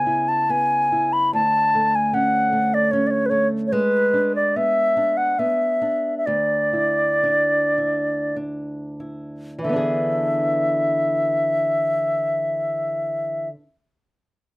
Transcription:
0.00 1.33 C#3 medium
0.00 0.48 B3 soft
0.00 0.30 G#5 medium
0.06 0.91 E4 soft
0.28 0.52 A5 medium
0.49 1.41 B3 soft
0.49 1.14 G#5 medium
0.92 1.42 E4 soft
1.13 1.33 B5 medium
1.33 3.74 D2 soft
1.33 1.97 A5 medium
1.75 2.51 A3 soft
1.95 2.16 G#5 medium
2.13 2.92 C#4 soft
2.13 2.76 F#5 medium
2.53 3.30 A3 soft
2.74 2.93 D5 medium
2.91 3.82 C#4 soft
2.91 3.08 C#5 medium
3.07 3.27 C#5 medium
3.07 3.12 D5 soft
3.26 3.31 B4 soft
3.26 3.48 C#5 medium
3.31 3.81 A3 soft
3.67 3.74 C#5 soft
3.72 6.26 G#3 medium
3.72 4.35 B4 medium
4.14 4.96 D4 soft
4.36 4.58 D5 medium
4.56 5.38 B3 soft
4.56 5.19 E5 medium
4.97 5.81 D4 soft
5.17 5.40 F#5 medium
5.39 6.35 B3 soft
5.39 6.17 E5 medium
5.82 6.73 D4 soft
6.18 6.27 E5 soft
6.26 9.63 D2 medium
6.26 8.36 D5 medium
6.73 7.77 E4 soft
7.23 8.36 D4 soft
7.78 9.00 E4 soft
8.36 9.69 D4 soft
9.00 9.72 E4 soft
9.59 13.48 E3 soft
9.59 13.48 E5 soft
9.64 13.54 D3 soft
9.69 13.59 B3 soft
9.69 13.63 D4 soft
9.76 13.66 G#4 soft

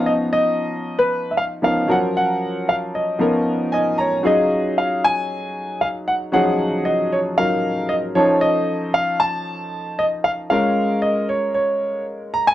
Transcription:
0.00 1.58 F3 medium
0.00 1.59 B3 medium
0.00 1.59 C#4 medium
0.00 1.59 D#4 medium
0.00 1.60 A#5 medium
0.06 0.12 D#5 medium
0.33 1.01 D#5 loud
0.99 1.32 B4 loud
1.31 1.37 E5 medium
1.37 1.43 F5 medium
1.62 1.87 F3 medium
1.62 1.89 B3 soft
1.62 1.87 C#4 soft
1.62 1.89 D#4 soft
1.62 1.88 A#4 medium
1.62 1.88 F5 medium
1.87 3.17 F3 medium
1.87 3.16 F#3 medium
1.87 3.17 C#4 medium
1.87 3.17 A#4 medium
1.87 1.97 F#5 medium
2.17 2.70 F#5 medium
2.69 2.75 F5 medium
2.95 3.69 D#5 medium
3.19 4.22 F3 medium
3.19 4.22 B3 medium
3.19 4.22 C#4 medium
3.19 4.22 D#4 medium
3.19 4.23 A#4 medium
3.72 3.97 D#5 medium
3.72 3.96 G#5 medium
3.98 4.26 C#5 medium
3.98 4.22 A#5 medium
4.23 6.29 F#3 medium
4.23 6.29 C#4 medium
4.23 6.29 D#4 medium
4.23 6.29 F4 medium
4.23 6.30 G#4 medium
4.23 4.79 D#5 medium
4.78 5.04 F5 medium
5.04 5.84 G#5 loud
5.81 5.87 F5 medium
6.08 6.13 F#5 medium
6.32 7.36 F3 medium
6.32 7.35 F#3 medium
6.32 7.35 C#4 medium
6.32 7.36 D#4 medium
6.32 7.36 G#4 medium
6.32 6.87 F#5 medium
6.85 7.12 D#5 medium
7.12 7.18 C#5 medium
7.38 8.16 F#3 medium
7.38 8.15 C#4 soft
7.38 8.15 D#4 soft
7.38 8.17 F4 soft
7.38 8.17 A#4 medium
7.38 7.92 F5 loud
7.89 7.95 D#5 medium
8.15 10.21 F3 medium
8.15 10.21 C#4 medium
8.15 10.21 D#4 medium
8.15 10.22 A4 medium
8.15 8.40 C#5 medium
8.41 8.95 D#5 loud
8.94 9.19 F5 loud
9.20 10.01 A5 loud
9.99 10.05 D#5 medium
10.24 10.30 F5 medium
10.50 12.54 G#3 medium
10.50 12.54 C#4 medium
10.50 12.54 F4 medium
10.50 12.54 A#4 medium
10.50 10.99 F5 loud
11.02 11.27 D#5 medium
11.29 11.53 C#5 medium
11.54 12.04 C#5 medium
12.34 12.48 A#5 loud
12.47 12.54 G#5 loud

